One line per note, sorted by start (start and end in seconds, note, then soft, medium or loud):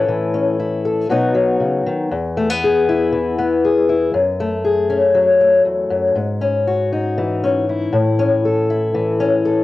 0.00 1.07 A2 medium
0.00 0.33 C#4 soft
0.00 0.58 E4 soft
0.00 0.84 A4 medium
0.08 1.09 E3 soft
0.34 1.07 C#4 soft
0.59 1.07 E4 soft
0.85 1.07 A4 soft
1.09 1.60 B2 medium
1.09 1.33 F#3 soft
1.09 2.09 B3 soft
1.09 2.09 D#4 soft
1.09 2.09 F#4 soft
1.34 2.08 F#3 soft
1.60 1.86 C#3 soft
1.86 2.12 D#3 medium
2.11 4.13 E2 medium
2.37 2.50 A3 medium
2.50 3.37 B3 soft
2.64 3.64 G#4 soft
2.89 3.88 E4 medium
3.12 4.14 E3 soft
3.39 4.11 B3 soft
3.65 4.17 G#4 soft
3.89 4.11 E4 soft
4.14 5.65 F#2 medium
4.40 5.39 A3 medium
4.64 6.13 G#4 soft
4.90 6.41 C#4 medium
5.15 6.13 F#3 medium
5.41 6.17 A3 soft
5.65 5.90 E2 medium
5.90 6.15 F#2 medium
6.15 7.90 G#2 medium
6.41 7.43 C#4 medium
6.67 7.68 F#4 medium
6.93 7.91 D#4 medium
7.18 8.94 E3 medium
7.44 7.91 C#4 medium
7.69 8.45 E4 medium
7.93 9.64 A2 medium
8.19 9.19 C#4 medium
8.45 9.44 A4 medium
8.70 9.64 E4 medium
8.94 9.64 E3 medium
9.20 9.64 C#4 medium
9.45 9.64 A4 medium